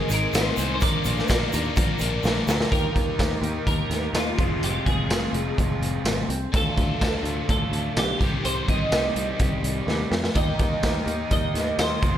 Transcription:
Already playing: G#4 A#4 D#5 G#5 C6
0.09 G#1 G#2 D#3 G#3 C4 D#4 G#4 A#4, closed hi-hat, shaker
0.33 G#1 G#2 D#3 G#3 C4 D#4 G#4 C5, snare, closed hi-hat, tambourine, shaker
0.57 C2 G#2 D#3 G#3 C4 D#4 G#4, closed hi-hat, shaker
0.74 C5
0.80 A#1 A#2 D3 F3 A#3 D4 A#4 D5 F5 D6, kick, closed hi-hat, shaker
1.05 A#1 A#2 D3 F3 A#3 D4 A#4, closed hi-hat, shaker
1.17 snare, shaker
1.28 A#1 A#2 D3 F3 A#3 D4 A#4, kick, snare, closed hi-hat, tambourine, shaker
1.52 D#2 A#2 D3 F3 A#3 D4 A#4, closed hi-hat, shaker
1.65 shaker
1.76 A#1 A#2 D3 F3 A#3 D4 A#4, kick, closed hi-hat, shaker
1.99 A#1 A#2 D3 F3 A#3 D4 A#4, closed hi-hat, shaker
2.23 A#1 A#2 D3 F3 A#3 D4 A#4, snare, shaker
2.47 D2 A#2 D3 F3 A#3 D4 A#4, snare, shaker
2.61 snare
2.70 D#2 D#3 A#3 D#4 G4 A#4, kick, closed hi-hat
2.96 D#2, kick, closed hi-hat
3.19 D#2, kick, snare, closed hi-hat, tambourine
3.42 D#2 D#3 A#3 D#4 G4, closed hi-hat
3.67 D#2 A#4, kick, closed hi-hat
3.90 D#2, snare, closed hi-hat
4.14 D#2 F4, snare, closed hi-hat, tambourine
4.37 F1 F2 C3 F3 G#3 C4 F4 G#4, kick, closed hi-hat
4.62 F1 G4, closed hi-hat
4.86 F1 G#4, kick, closed hi-hat
5.09 F1 F2 C3 F3 G#3 C4 F4, snare, closed hi-hat, tambourine
5.33 F1, closed hi-hat
5.58 F1, kick, closed hi-hat
5.80 F1, closed hi-hat
6.05 G#1, snare, closed hi-hat, tambourine
6.29 C2, closed hi-hat
6.52 D2 D3 A3 D4 F4 A4, kick, closed hi-hat
6.77 D2, kick, closed hi-hat
7.01 D2, kick, snare, closed hi-hat, tambourine
7.23 D2 A3 D4 F4, closed hi-hat
7.28 D3
7.49 D2 A4, kick, closed hi-hat
7.72 D2, closed hi-hat
7.96 B1 G4, snare, closed hi-hat, tambourine
8.20 C2 C3 D#3 G3 C4 G4, kick, closed hi-hat
8.45 C2 C5, closed hi-hat
8.68 C2 D#5, kick, closed hi-hat
8.92 C2 C3 D#3 G3 C4 G4, snare, closed hi-hat, tambourine
9.16 C2, closed hi-hat
9.39 C2, kick, closed hi-hat
9.63 C2, closed hi-hat
9.87 D#2, snare
10.11 F2, snare
10.24 snare
10.34 D#2 D#3 A#3 D#4 G4 A#4 D#5 G5 D#6, kick, closed hi-hat
10.59 D#2, kick, closed hi-hat
10.83 D#2, kick, snare, closed hi-hat, tambourine
11.06 D#2 D#3 A#3 D#4 G4, closed hi-hat
11.31 D#2 D#5, kick, closed hi-hat
11.54 D#2, snare, closed hi-hat
11.78 D#2 C5, snare, closed hi-hat, tambourine
12.02 F1 F2 C3 F3 G#3 C4 F4 C5 F5 G#5, kick, closed hi-hat

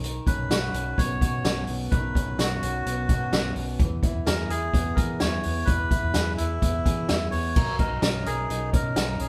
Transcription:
Already playing: B1
0.04 D#3, closed hi-hat
0.27 C#4 B4, kick, closed hi-hat
0.38 B1
0.49 B1 F#4, snare, closed hi-hat
0.73 B1 C#4, closed hi-hat
0.97 B1 B3 C#5, kick, closed hi-hat
1.21 B2 F#4, kick, closed hi-hat
1.44 B1 C#4, snare, closed hi-hat
1.67 B1 B3, open hi-hat
1.91 B1 D#3 B4, kick, closed hi-hat
2.15 C#4, kick, closed hi-hat
2.27 B1
2.38 B1 F#4, snare, closed hi-hat
2.62 B1 C#4, closed hi-hat
2.86 B1 B3, closed hi-hat
3.09 B2 F#4, kick, closed hi-hat
3.32 B1 C#4, snare, closed hi-hat
3.56 B1 B3, open hi-hat
3.79 E2 E3, kick, closed hi-hat
4.03 E4, kick, closed hi-hat
4.15 E2
4.26 E2 G#4 A#4, snare, closed hi-hat
4.49 E2 E4 G#4, closed hi-hat
4.73 E2 B3, kick, closed hi-hat
4.95 E3 G#4 A#4, kick, closed hi-hat
5.20 E2 E4 C#5, snare, closed hi-hat
5.43 E2 B3, open hi-hat
5.65 E2 E3 B4, kick, closed hi-hat
5.91 E4, kick, closed hi-hat
6.03 E2
6.14 E2 G#4, snare, closed hi-hat
6.37 E2 E4, closed hi-hat
6.62 E2 B3, kick, closed hi-hat
6.85 E3 G#4, kick, closed hi-hat
7.09 E2 E4, snare, closed hi-hat
7.31 E2 B3 C#5, open hi-hat
7.56 B1 F#3 A#4, kick, crash
7.79 D#4 A#4, kick, closed hi-hat
7.92 B1
8.02 B1 C#4, snare, closed hi-hat
8.26 B1 G#4 A#4, closed hi-hat
8.50 B1 D#4, closed hi-hat
8.73 B2 C#4 A#4, kick, closed hi-hat
8.96 B1 G#4, snare, closed hi-hat
9.08 A#4
9.19 B1 C#4 G#4, closed hi-hat

